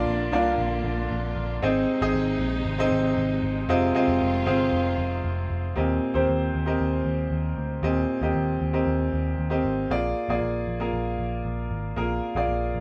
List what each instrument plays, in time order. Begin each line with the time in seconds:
Already playing: string section D3 A#3 F4, upright piano A#3 D4 F4 D5
0.07 picked electric bass A#1
0.32 picked electric bass C2, upright piano A#3 D4 F4 D5
0.58 picked electric bass A#1
0.84 picked electric bass A#1
1.11 picked electric bass A#1
1.36 picked electric bass A#1
1.62 picked electric bass G#1, string section C3 G#3 D#4, upright piano C4 D#4 G#4 D#5
2.01 picked electric bass G#1, upright piano C4 D#4 G#4 D#5
2.14 picked electric bass G#1
2.39 picked electric bass A#1
2.65 picked electric bass G#1
2.79 upright piano C4 D#4 G#4 D#5
2.91 picked electric bass G#1
3.17 picked electric bass G#1
3.43 picked electric bass G#1
3.69 picked electric bass F1, upright piano C3 C4 F4 G#4 D#5, string section D#3 F4
3.95 upright piano C4 F4 G#4 D#5
4.08 picked electric bass F1
4.21 picked electric bass F1
4.46 picked electric bass G1, upright piano C4 F4 G#4 F5
4.73 picked electric bass F1
4.98 picked electric bass F1
5.24 picked electric bass F1
5.50 picked electric bass F1
5.76 picked electric bass D#2, upright piano A#2 C4 G4 A#4 D#5
6.14 picked electric bass D#2, upright piano C4 G4 A#4 C5
6.28 picked electric bass D#2
6.54 picked electric bass D#2
6.66 upright piano C4 G4 A#4 D#5
6.80 picked electric bass D#2
7.05 picked electric bass D#2
7.30 picked electric bass D#2
7.57 picked electric bass D2
7.82 picked electric bass D#2, upright piano A#2 C4 G4 A#4 D#5
8.21 picked electric bass D#2, upright piano C4 G4 A#4 D#5
8.35 picked electric bass D#2
8.60 picked electric bass D#2
8.73 upright piano C4 G4 A#4 D#5
8.86 picked electric bass D#2
9.13 picked electric bass D#2
9.38 picked electric bass D#2
9.50 upright piano C4 G4 A#4 D#5
9.64 picked electric bass G#1
9.90 picked electric bass A#1, upright piano A#3 F4 G#4 D5
10.29 picked electric bass A#1, upright piano A#3 F4 G#4 D5
10.42 picked electric bass A#1
10.67 picked electric bass A#1
10.80 upright piano A#3 F4 G#4 A#4
10.93 picked electric bass A#1
11.19 picked electric bass A#1
11.45 picked electric bass A#1
11.71 picked electric bass G#1
11.96 picked electric bass A#1, upright piano A#3 F4 G#4 A#4
12.35 picked electric bass A#1, upright piano A#3 F4 G#4 D5
12.49 picked electric bass A#1
12.74 picked electric bass A#1